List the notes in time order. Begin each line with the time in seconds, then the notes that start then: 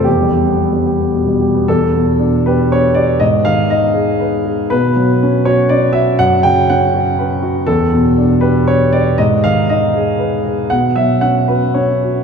0.04 E2 G4
0.21 G3
0.33 G4
0.46 B3
0.72 G3
0.86 G4
1.00 B3
1.13 B2
1.27 G3
1.41 G4
1.54 B3
1.68 E2 A4
1.94 B2
2.19 D4
2.46 G4 B4
2.72 D4 C#5
2.95 G4 D5
3.20 G#2 D#5
3.45 D#3 F5
3.70 D#4 D#5
3.94 G#4
4.20 B4
4.45 G#4
4.70 B2 B4
4.96 F#3
5.23 C#4
5.45 F#4 C#5
5.69 C#4 D5
5.93 F#4 E5
6.19 F#2 F#5
6.43 C#3 G5
6.70 C#4 F#5
6.94 F#4
7.19 B4
7.43 F#4
7.66 E2 A4
7.93 B2
8.17 D4
8.41 G4 B4
8.68 D4 C#5
8.93 G4 D5
9.18 G#2 D#5
9.44 D#3 F5
9.70 D#4 D#5
9.95 G#4
10.18 B4
10.45 G#4
10.70 B2 F#5
10.96 F#3 E5
11.21 C#4 F#5
11.48 F#4 B4
11.74 C#4 C#5
12.04 F#4